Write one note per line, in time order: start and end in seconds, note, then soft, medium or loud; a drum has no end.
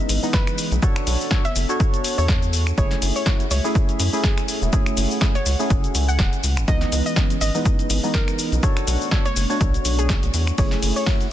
0.00 0.20 E3 loud
0.00 0.80 E3 medium
0.00 0.20 G#3 medium
0.00 0.20 B3 medium
0.00 0.80 C#4 medium
0.00 0.20 D#4 loud
0.00 0.80 B4 medium
0.00 0.80 D#5 medium
0.09 0.19 G#1 medium
0.09 open hi-hat loud
0.09 cabasa medium
0.23 0.80 E3 medium
0.23 0.80 G#3 medium
0.23 0.80 B3 medium
0.23 0.80 D#4 loud
0.23 cabasa soft
0.33 0.64 B4 loud
0.33 kick loud
0.33 snare loud
0.33 closed hi-hat medium
0.33 cabasa soft
0.47 finger snap medium
0.47 closed hi-hat medium
0.47 cabasa soft
0.58 open hi-hat loud
0.58 cabasa medium
0.72 0.79 B1 loud
0.72 closed hi-hat soft
0.72 cabasa soft
0.82 2.76 B3 medium
0.82 1.29 D4 loud
0.82 2.76 D4 medium
0.82 1.29 F#4 medium
0.82 2.76 A4 medium
0.82 1.29 A4 medium
0.82 2.76 C#5 loud
0.82 1.29 C#5 loud
0.82 kick loud
0.82 closed hi-hat medium
0.82 cabasa soft
0.96 finger snap medium
0.96 closed hi-hat medium
0.96 cabasa soft
1.07 1.16 B1 loud
1.07 open hi-hat loud
1.07 cabasa medium
1.21 cabasa soft
1.31 1.44 D4 medium
1.31 1.44 F#4 medium
1.31 1.44 A4 medium
1.31 1.44 C#5 loud
1.31 kick loud
1.31 snare loud
1.31 closed hi-hat medium
1.31 cabasa soft
1.45 1.74 E5 loud
1.45 closed hi-hat medium
1.45 cabasa soft
1.56 1.65 F#1 loud
1.56 open hi-hat loud
1.56 cabasa medium
1.69 2.75 D4 medium
1.69 2.75 F#4 medium
1.69 2.75 A4 medium
1.69 2.75 C#5 medium
1.69 closed hi-hat soft
1.69 cabasa soft
1.80 kick loud
1.80 closed hi-hat medium
1.80 cabasa soft
1.94 closed hi-hat medium
1.94 cabasa soft
2.04 open hi-hat loud
2.04 cabasa medium
2.18 2.72 E2 medium
2.18 2.69 C#5 loud
2.18 cabasa soft
2.28 kick loud
2.28 snare loud
2.28 closed hi-hat medium
2.28 cabasa soft
2.42 closed hi-hat soft
2.42 cabasa soft
2.53 open hi-hat loud
2.53 cabasa medium
2.67 finger snap medium
2.67 cabasa soft
2.78 2.95 F#1 loud
2.78 3.24 A3 medium
2.78 6.40 A3 medium
2.78 3.24 C#4 medium
2.78 3.24 E4 medium
2.78 6.40 F#4 medium
2.78 6.40 G#4 medium
2.78 3.24 G#4 loud
2.78 3.08 C#5 medium
2.78 4.71 E5 medium
2.78 kick loud
2.78 closed hi-hat medium
2.78 cabasa soft
2.91 snare soft
2.91 closed hi-hat medium
2.91 cabasa soft
3.02 3.11 F#1 loud
3.02 open hi-hat loud
3.02 cabasa medium
3.16 3.45 C#5 medium
3.16 cabasa soft
3.26 3.45 A3 medium
3.26 3.46 C#4 medium
3.26 3.46 E4 medium
3.26 3.46 F#4 loud
3.26 kick loud
3.26 snare loud
3.26 closed hi-hat medium
3.26 cabasa soft
3.40 closed hi-hat medium
3.40 cabasa soft
3.51 3.60 C#2 loud
3.51 3.81 C#5 loud
3.51 open hi-hat loud
3.51 cabasa medium
3.64 4.10 A3 medium
3.64 4.10 C#4 medium
3.64 4.10 E4 medium
3.64 4.10 G#4 loud
3.64 cabasa soft
3.75 kick loud
3.75 closed hi-hat medium
3.75 cabasa soft
3.89 closed hi-hat medium
3.89 cabasa soft
4.00 4.09 F#2 medium
4.00 open hi-hat loud
4.00 cabasa medium
4.13 4.70 A3 medium
4.13 4.70 C#4 medium
4.13 4.70 E4 medium
4.13 4.70 G#4 loud
4.13 cabasa soft
4.24 4.55 G#4 medium
4.24 kick loud
4.24 snare loud
4.24 closed hi-hat medium
4.24 cabasa soft
4.38 finger snap medium
4.38 closed hi-hat soft
4.38 cabasa soft
4.48 open hi-hat loud
4.48 cabasa medium
4.62 4.69 E1 medium
4.62 closed hi-hat soft
4.62 cabasa soft
4.73 5.19 A3 loud
4.73 5.19 C#4 medium
4.73 5.19 E4 medium
4.73 5.19 G#4 loud
4.73 6.42 F#5 loud
4.73 kick loud
4.73 closed hi-hat medium
4.73 cabasa soft
4.86 finger snap medium
4.86 closed hi-hat medium
4.86 cabasa soft
4.97 5.07 F#1 loud
4.97 open hi-hat loud
4.97 cabasa medium
5.11 cabasa soft
5.21 5.34 A3 medium
5.21 5.34 C#4 medium
5.21 5.34 E4 medium
5.21 5.34 G#4 loud
5.21 kick loud
5.21 snare loud
5.21 closed hi-hat medium
5.21 cabasa soft
5.35 5.64 C#5 medium
5.35 closed hi-hat medium
5.35 cabasa soft
5.46 5.55 C#2 loud
5.46 open hi-hat loud
5.46 cabasa medium
5.59 6.42 A3 medium
5.59 6.42 C#4 medium
5.59 6.42 E4 medium
5.59 6.42 G#4 medium
5.59 cabasa soft
5.70 5.88 F#1 medium
5.70 kick loud
5.70 closed hi-hat medium
5.70 cabasa soft
5.84 closed hi-hat medium
5.84 cabasa soft
5.95 6.19 C#2 medium
5.95 open hi-hat loud
5.95 cabasa medium
6.08 6.59 F#5 loud
6.08 cabasa soft
6.19 6.29 E1 medium
6.19 kick loud
6.19 snare loud
6.19 closed hi-hat medium
6.19 cabasa soft
6.33 closed hi-hat medium
6.33 cabasa soft
6.43 6.59 C#2 medium
6.43 8.61 E3 medium
6.43 8.61 C#4 medium
6.43 8.61 B4 medium
6.43 8.61 D#5 medium
6.43 open hi-hat loud
6.43 cabasa medium
6.57 6.65 G#1 medium
6.57 finger snap medium
6.57 cabasa soft
6.68 6.86 C#2 loud
6.68 7.14 E3 loud
6.68 7.14 G#3 medium
6.68 7.14 B3 medium
6.68 7.14 D#4 loud
6.68 6.98 D#5 loud
6.68 kick loud
6.68 closed hi-hat medium
6.68 cabasa medium
6.81 snare soft
6.81 closed hi-hat medium
6.81 cabasa soft
6.92 7.02 C#2 loud
6.92 open hi-hat loud
6.92 cabasa medium
7.06 7.35 D#5 medium
7.06 cabasa soft
7.16 7.36 E3 medium
7.16 7.36 G#3 medium
7.16 7.36 B3 medium
7.16 7.36 C#4 loud
7.16 kick loud
7.16 snare loud
7.16 closed hi-hat medium
7.16 cabasa soft
7.30 closed hi-hat medium
7.30 cabasa soft
7.41 7.50 G#1 loud
7.41 7.72 D#5 loud
7.41 open hi-hat loud
7.41 cabasa medium
7.54 8.00 E3 loud
7.54 8.00 G#3 medium
7.54 8.00 B3 medium
7.54 8.00 D#4 loud
7.54 cabasa soft
7.65 kick loud
7.65 closed hi-hat medium
7.65 cabasa soft
7.79 closed hi-hat medium
7.79 cabasa soft
7.90 7.99 G#1 loud
7.90 open hi-hat loud
7.90 cabasa medium
8.03 8.60 E3 medium
8.03 8.60 G#3 medium
8.03 8.60 B3 medium
8.03 8.61 D#4 loud
8.03 cabasa soft
8.14 8.45 A#4 medium
8.14 kick loud
8.14 snare loud
8.14 closed hi-hat medium
8.14 cabasa soft
8.28 finger snap medium
8.28 closed hi-hat medium
8.28 cabasa soft
8.39 open hi-hat loud
8.39 cabasa medium
8.52 8.60 B1 loud
8.52 closed hi-hat soft
8.52 cabasa soft
8.63 10.56 A3 medium
8.63 10.56 B3 medium
8.63 9.09 D4 medium
8.63 10.56 D4 medium
8.63 9.09 F#4 medium
8.63 9.09 A4 medium
8.63 10.56 C#5 medium
8.63 9.09 C#5 loud
8.63 kick loud
8.63 closed hi-hat medium
8.63 cabasa soft
8.77 finger snap medium
8.77 closed hi-hat medium
8.77 cabasa soft
8.87 8.97 B1 loud
8.87 open hi-hat loud
8.87 cabasa medium
9.01 cabasa soft
9.11 9.25 D4 medium
9.11 9.25 F#4 medium
9.11 9.25 A4 medium
9.11 9.25 C#5 loud
9.11 kick loud
9.11 snare loud
9.11 closed hi-hat medium
9.11 cabasa soft
9.25 9.55 C#5 medium
9.25 closed hi-hat medium
9.25 cabasa soft
9.36 9.46 F#1 loud
9.36 open hi-hat loud
9.36 cabasa medium
9.50 10.56 A3 medium
9.50 10.55 D4 medium
9.50 10.56 F#4 medium
9.50 10.56 C#5 loud
9.50 cabasa soft
9.61 9.78 B1 medium
9.61 kick loud
9.61 closed hi-hat medium
9.61 cabasa soft
9.74 closed hi-hat medium
9.74 cabasa soft
9.85 10.16 B1 medium
9.85 open hi-hat loud
9.85 cabasa medium
9.99 10.50 G#4 medium
9.99 closed hi-hat soft
9.99 cabasa soft
10.09 kick loud
10.09 snare loud
10.09 closed hi-hat medium
10.09 cabasa soft
10.23 10.30 B1 medium
10.23 closed hi-hat medium
10.23 cabasa soft
10.34 10.51 E2 loud
10.34 open hi-hat loud
10.34 cabasa medium
10.47 finger snap medium
10.47 cabasa soft
10.58 10.76 F#1 loud
10.58 11.04 A3 medium
10.58 11.32 A3 medium
10.58 11.04 C#4 medium
10.58 11.04 E4 medium
10.58 11.32 F#4 medium
10.58 11.32 G#4 medium
10.58 11.04 G#4 loud
10.58 10.89 C#5 medium
10.58 11.32 E5 medium
10.58 kick loud
10.58 closed hi-hat medium
10.58 ride medium
10.58 cabasa soft
10.71 snare soft
10.71 closed hi-hat medium
10.71 cabasa soft
10.83 10.92 F#1 loud
10.83 open hi-hat loud
10.83 cabasa medium
10.96 11.25 C#5 medium
10.96 cabasa soft
11.06 11.26 A3 medium
11.06 11.26 C#4 medium
11.06 11.26 E4 medium
11.06 11.26 F#4 loud
11.06 kick loud
11.06 snare loud
11.06 closed hi-hat medium
11.06 ride medium
11.06 cabasa soft
11.21 closed hi-hat medium
11.21 cabasa soft